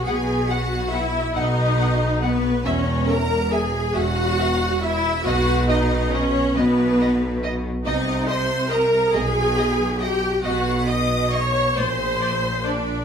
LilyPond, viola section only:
\new Staff \with { instrumentName = "Viola section" } { \time 6/8 \key b \major \tempo 4. = 46 gis'8 fis'8 e'8 dis'4 b8 | cis'8 ais'8 gis'8 fis'4 e'8 | fis'8 dis'8 cis'8 b4 r8 | \key aes \lydian ees'8 c''8 bes'8 aes'4 g'8 |
ges'8 ees''8 des''8 c''4 d'8 | }